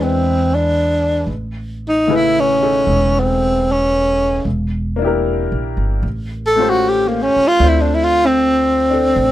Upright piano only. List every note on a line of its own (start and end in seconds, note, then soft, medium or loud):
0.00 1.26 G#3 soft
0.00 1.28 D4 soft
0.00 1.29 E4 soft
0.00 1.30 G#4 soft
0.00 1.31 B4 medium
2.07 4.46 C#3 soft
2.07 4.45 A3 soft
2.07 4.46 E4 soft
2.07 2.61 G#4 soft
2.07 4.47 B4 medium
2.61 4.45 D#4 soft
2.61 4.46 G#4 soft
2.61 4.46 A4 soft
4.96 6.01 A#3 medium
4.96 6.03 D4 soft
5.02 6.04 E4 soft
5.02 6.05 G4 medium
5.07 6.07 A#4 medium
6.56 7.58 A3 medium
6.56 7.60 C#4 soft
6.56 7.61 F4 medium
6.56 7.61 G4 soft
6.61 7.62 C5 medium
7.59 9.32 A3 soft
7.59 9.32 C4 soft
7.59 8.89 D4 soft
7.59 9.32 F4 soft
7.64 9.32 C5 medium
8.90 9.32 D4 medium
8.90 9.32 A4 medium